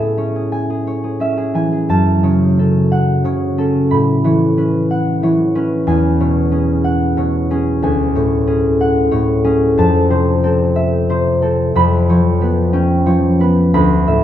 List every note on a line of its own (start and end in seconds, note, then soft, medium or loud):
0.00 1.93 A2 soft
0.00 0.35 G#4 soft
0.00 2.58 A4 soft
0.00 1.19 E5 soft
0.00 1.88 A5 medium
0.17 1.19 C#4 soft
0.17 0.86 C#5 soft
0.36 0.69 G#4 soft
0.52 1.53 G#5 medium
0.70 1.03 G#4 soft
0.87 2.22 C#5 soft
1.04 1.36 G#4 soft
1.20 2.57 C#4 soft
1.20 5.11 E5 medium
1.37 1.71 G#4 soft
1.54 1.92 E3 soft
1.54 1.92 G#5 soft
1.72 1.93 G#4 soft
1.89 3.93 F#2 soft
1.89 5.80 A5 medium
2.23 3.23 C#3 soft
2.23 3.23 C#5 soft
2.58 3.57 C#4 soft
2.58 3.57 A4 soft
2.92 4.89 F#5 medium
3.24 3.94 C#3 soft
3.24 4.24 C#5 medium
3.58 4.56 C#4 soft
3.58 5.92 A4 medium
3.91 5.92 A2 medium
3.91 7.81 B5 medium
4.24 5.22 E3 medium
4.24 5.22 C#5 medium
4.57 5.54 C#4 soft
4.57 5.54 B4 soft
4.91 6.83 F#5 medium
5.23 5.91 E3 medium
5.23 6.19 C#5 medium
5.55 6.50 C#4 medium
5.55 7.86 B4 medium
5.87 7.86 E2 medium
5.87 7.82 G#5 medium
6.20 7.16 B2 medium
6.20 7.16 C#5 medium
6.52 7.50 C#4 soft
6.52 7.50 G#4 soft
6.84 8.79 F#5 medium
7.17 7.86 B2 medium
7.17 8.14 C#5 medium
7.51 8.46 C#4 medium
7.51 8.46 G#4 medium
7.83 9.80 D2 medium
7.83 9.80 G#5 medium
8.15 9.11 A2 medium
8.15 9.10 C#5 medium
8.47 9.43 C#4 medium
8.47 9.43 G#4 soft
8.81 9.80 F#5 medium
9.11 9.80 A2 medium
9.11 9.80 C#5 medium
9.44 9.80 C#4 medium
9.44 9.80 G#4 medium
9.77 11.74 F2 medium
9.77 11.78 A5 medium
10.10 11.08 C3 medium
10.10 11.09 C5 medium
10.43 11.41 C4 medium
10.43 11.41 A4 medium
10.76 11.78 E5 medium
11.09 11.78 C3 medium
11.09 11.78 C5 medium
11.42 11.78 C4 medium
11.42 11.78 A4 medium
11.75 13.77 F2 medium
11.75 13.73 B5 medium
12.09 13.05 F3 medium
12.09 13.05 C#5 medium
12.41 13.39 B3 medium
12.41 13.40 B4 medium
12.73 13.77 C#4 medium
12.73 13.77 G5 medium
13.06 13.77 F3 medium
13.06 13.77 C#5 medium
13.40 14.24 B3 medium
13.40 14.24 B4 medium
13.74 14.24 D2 medium
13.74 14.24 B5 medium
14.07 14.24 A2 soft
14.07 14.24 E5 medium